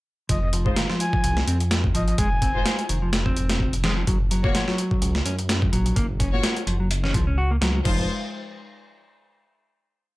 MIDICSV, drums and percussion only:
0, 0, Header, 1, 2, 480
1, 0, Start_track
1, 0, Tempo, 472441
1, 300, Time_signature, 4, 2, 24, 8
1, 10331, End_track
2, 0, Start_track
2, 0, Title_t, "Drums"
2, 297, Note_on_c, 9, 36, 104
2, 297, Note_on_c, 9, 42, 83
2, 399, Note_off_c, 9, 36, 0
2, 399, Note_off_c, 9, 42, 0
2, 537, Note_on_c, 9, 42, 68
2, 639, Note_off_c, 9, 42, 0
2, 669, Note_on_c, 9, 36, 93
2, 771, Note_off_c, 9, 36, 0
2, 777, Note_on_c, 9, 38, 108
2, 777, Note_on_c, 9, 42, 82
2, 879, Note_off_c, 9, 38, 0
2, 879, Note_off_c, 9, 42, 0
2, 910, Note_on_c, 9, 38, 45
2, 1012, Note_off_c, 9, 38, 0
2, 1017, Note_on_c, 9, 42, 62
2, 1119, Note_off_c, 9, 42, 0
2, 1149, Note_on_c, 9, 36, 93
2, 1251, Note_off_c, 9, 36, 0
2, 1257, Note_on_c, 9, 42, 81
2, 1359, Note_off_c, 9, 42, 0
2, 1390, Note_on_c, 9, 38, 52
2, 1491, Note_off_c, 9, 38, 0
2, 1499, Note_on_c, 9, 42, 66
2, 1601, Note_off_c, 9, 42, 0
2, 1630, Note_on_c, 9, 42, 41
2, 1732, Note_off_c, 9, 42, 0
2, 1737, Note_on_c, 9, 38, 112
2, 1737, Note_on_c, 9, 42, 82
2, 1839, Note_off_c, 9, 38, 0
2, 1839, Note_off_c, 9, 42, 0
2, 1869, Note_on_c, 9, 36, 94
2, 1971, Note_off_c, 9, 36, 0
2, 1979, Note_on_c, 9, 42, 67
2, 2080, Note_off_c, 9, 42, 0
2, 2110, Note_on_c, 9, 42, 40
2, 2211, Note_off_c, 9, 42, 0
2, 2217, Note_on_c, 9, 42, 83
2, 2218, Note_on_c, 9, 36, 102
2, 2319, Note_off_c, 9, 36, 0
2, 2319, Note_off_c, 9, 42, 0
2, 2458, Note_on_c, 9, 36, 92
2, 2458, Note_on_c, 9, 42, 68
2, 2560, Note_off_c, 9, 36, 0
2, 2560, Note_off_c, 9, 42, 0
2, 2699, Note_on_c, 9, 38, 108
2, 2699, Note_on_c, 9, 42, 84
2, 2800, Note_off_c, 9, 38, 0
2, 2800, Note_off_c, 9, 42, 0
2, 2832, Note_on_c, 9, 42, 42
2, 2933, Note_off_c, 9, 42, 0
2, 2939, Note_on_c, 9, 42, 66
2, 3041, Note_off_c, 9, 42, 0
2, 3178, Note_on_c, 9, 38, 101
2, 3178, Note_on_c, 9, 42, 73
2, 3280, Note_off_c, 9, 38, 0
2, 3280, Note_off_c, 9, 42, 0
2, 3310, Note_on_c, 9, 36, 84
2, 3412, Note_off_c, 9, 36, 0
2, 3419, Note_on_c, 9, 42, 61
2, 3521, Note_off_c, 9, 42, 0
2, 3551, Note_on_c, 9, 38, 103
2, 3551, Note_on_c, 9, 42, 75
2, 3653, Note_off_c, 9, 38, 0
2, 3653, Note_off_c, 9, 42, 0
2, 3659, Note_on_c, 9, 36, 84
2, 3760, Note_off_c, 9, 36, 0
2, 3791, Note_on_c, 9, 42, 59
2, 3893, Note_off_c, 9, 42, 0
2, 3899, Note_on_c, 9, 38, 111
2, 3899, Note_on_c, 9, 42, 64
2, 4000, Note_off_c, 9, 38, 0
2, 4000, Note_off_c, 9, 42, 0
2, 4139, Note_on_c, 9, 36, 104
2, 4139, Note_on_c, 9, 42, 86
2, 4240, Note_off_c, 9, 42, 0
2, 4241, Note_off_c, 9, 36, 0
2, 4379, Note_on_c, 9, 42, 69
2, 4481, Note_off_c, 9, 42, 0
2, 4511, Note_on_c, 9, 36, 96
2, 4613, Note_off_c, 9, 36, 0
2, 4620, Note_on_c, 9, 38, 110
2, 4620, Note_on_c, 9, 42, 85
2, 4722, Note_off_c, 9, 38, 0
2, 4722, Note_off_c, 9, 42, 0
2, 4753, Note_on_c, 9, 38, 47
2, 4854, Note_off_c, 9, 38, 0
2, 4860, Note_on_c, 9, 42, 63
2, 4962, Note_off_c, 9, 42, 0
2, 4991, Note_on_c, 9, 36, 94
2, 5093, Note_off_c, 9, 36, 0
2, 5099, Note_on_c, 9, 42, 84
2, 5200, Note_off_c, 9, 42, 0
2, 5232, Note_on_c, 9, 38, 54
2, 5333, Note_off_c, 9, 38, 0
2, 5340, Note_on_c, 9, 42, 67
2, 5442, Note_off_c, 9, 42, 0
2, 5472, Note_on_c, 9, 42, 43
2, 5574, Note_off_c, 9, 42, 0
2, 5580, Note_on_c, 9, 38, 115
2, 5580, Note_on_c, 9, 42, 87
2, 5682, Note_off_c, 9, 38, 0
2, 5682, Note_off_c, 9, 42, 0
2, 5712, Note_on_c, 9, 36, 94
2, 5813, Note_off_c, 9, 36, 0
2, 5820, Note_on_c, 9, 42, 66
2, 5922, Note_off_c, 9, 42, 0
2, 5952, Note_on_c, 9, 42, 42
2, 6053, Note_off_c, 9, 42, 0
2, 6059, Note_on_c, 9, 36, 104
2, 6059, Note_on_c, 9, 42, 86
2, 6161, Note_off_c, 9, 36, 0
2, 6161, Note_off_c, 9, 42, 0
2, 6299, Note_on_c, 9, 36, 96
2, 6299, Note_on_c, 9, 42, 71
2, 6401, Note_off_c, 9, 36, 0
2, 6401, Note_off_c, 9, 42, 0
2, 6538, Note_on_c, 9, 38, 108
2, 6538, Note_on_c, 9, 42, 83
2, 6640, Note_off_c, 9, 38, 0
2, 6640, Note_off_c, 9, 42, 0
2, 6670, Note_on_c, 9, 42, 44
2, 6772, Note_off_c, 9, 42, 0
2, 6779, Note_on_c, 9, 42, 66
2, 6880, Note_off_c, 9, 42, 0
2, 7018, Note_on_c, 9, 42, 84
2, 7119, Note_off_c, 9, 42, 0
2, 7150, Note_on_c, 9, 38, 42
2, 7251, Note_off_c, 9, 38, 0
2, 7258, Note_on_c, 9, 36, 95
2, 7258, Note_on_c, 9, 42, 66
2, 7360, Note_off_c, 9, 36, 0
2, 7360, Note_off_c, 9, 42, 0
2, 7739, Note_on_c, 9, 38, 116
2, 7739, Note_on_c, 9, 42, 68
2, 7840, Note_off_c, 9, 38, 0
2, 7840, Note_off_c, 9, 42, 0
2, 7978, Note_on_c, 9, 49, 84
2, 7979, Note_on_c, 9, 36, 112
2, 8080, Note_off_c, 9, 49, 0
2, 8081, Note_off_c, 9, 36, 0
2, 10331, End_track
0, 0, End_of_file